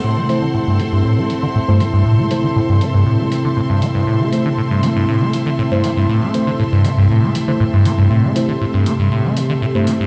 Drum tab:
HH |-o-o-o-o|-o-o-o-o|-o-o-o-o|-o-o-o-o|

HH |-o-o-o-o|